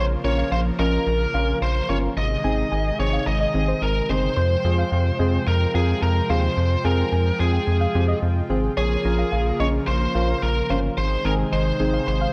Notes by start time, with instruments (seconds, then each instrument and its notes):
Already playing: analog synth bass A#1, analog synth pad C#3 F3 A#3 F4 A#4, synth pluck C#5
0.24 analog synth bass A#1, synth keys C#4 F4 A#4, lead electric guitar C#5
0.38 synth pluck F5
0.52 analog synth bass A#1, lead electric guitar C5, synth pluck F5
0.79 analog synth bass A#1, synth keys C#4 F4 A#4, lead electric guitar A#4, synth pluck D#5
1.07 analog synth bass A#1
1.34 analog synth bass A#1, synth keys C#4 F4 A#4, synth pluck F5
1.62 analog synth bass A#1, lead electric guitar C5
1.89 analog synth bass G1, synth keys C#4 F4 A#4, lead electric guitar C#5, synth pluck F5
2.17 analog synth bass G#1, analog synth pad C3 D#3 G#3 D#4 G#4, lead electric guitar D#5
2.44 analog synth bass G#1, synth keys C4 D#4 G#4, synth pluck G#5
2.72 analog synth bass G#1, synth pluck G#5
2.99 analog synth bass G#1, synth keys C4 D#4 G#4, lead electric guitar C#5
3.13 synth pluck F5
3.27 analog synth bass G#1, lead electric guitar D#5
3.41 synth pluck D#5
3.54 analog synth bass G#1, synth keys C4 D#4 G#4
3.68 synth pluck C5
3.82 analog synth bass G#1, lead electric guitar A#4
4.09 analog synth bass G1, synth keys C4 D#4 G#4, synth pluck C5, lead electric guitar C5
4.37 analog synth bass F2, analog synth pad F3 F4 G5, synth pluck C5
4.65 analog synth bass F2, synth keys C4 F4 G#4
4.78 synth pluck F5
4.92 analog synth bass F2, synth pluck F5
5.19 analog synth bass F2, synth keys C4 F4 G#4, synth pluck D#5
5.47 analog synth bass F2, lead electric guitar A#4
5.74 analog synth bass F2, synth keys C4 F4 A#4, lead electric guitar G#4, synth pluck F5
6.02 analog synth bass F2, lead electric guitar A#4
6.30 analog synth bass D#2, synth keys C4 F4 G#4, lead electric guitar C5, synth pluck F5
6.57 analog synth bass F2
6.85 analog synth bass F2, synth keys C4 F4 G#4, lead electric guitar A#4, synth pluck G#5
7.12 analog synth bass F2, synth pluck G#5
7.40 analog synth bass F2, synth keys C4 F4 G#4, lead electric guitar G#4
7.53 synth pluck G5
7.67 analog synth bass F2
7.81 synth pluck F5
7.95 analog synth bass F2, synth keys C4 F4 G4
8.08 synth pluck D#5
8.22 analog synth bass F2
8.50 analog synth bass G#1, synth keys C4 F4 G#4, synth pluck C5
8.77 analog synth bass A#1, analog synth pad C#3 F3 A#3 A#4, lead electric guitar G#4, synth pluck C#5
9.05 analog synth bass A#1, synth keys C#4 F4 A#4
9.19 synth pluck F5
9.32 analog synth bass A#1, synth pluck F5
9.60 analog synth bass A#1, synth keys C#4 F4 G#4, lead electric guitar C#5, synth pluck D#5
9.87 analog synth bass A#1, lead electric guitar C5
10.15 analog synth bass A#1, synth keys C#4 F4 A#4, synth pluck F5
10.42 analog synth bass A#1, lead electric guitar A#4
10.70 analog synth bass G1, synth keys C#4 F4 A#4, lead electric guitar C5, synth pluck F5
10.97 analog synth bass G#1, analog synth pad C3 D#3 G#3 D#4 G#4, lead electric guitar C5
11.25 analog synth bass G#1, synth keys C4 D#4 G#4, lead electric guitar A#4, synth pluck G#5
11.53 analog synth bass G#1, lead electric guitar C5, synth pluck D#5
11.80 analog synth bass G#1, synth keys C4 D#4 G#4
11.94 synth pluck F5
12.08 analog synth bass G#1, lead electric guitar C5
12.21 synth pluck F5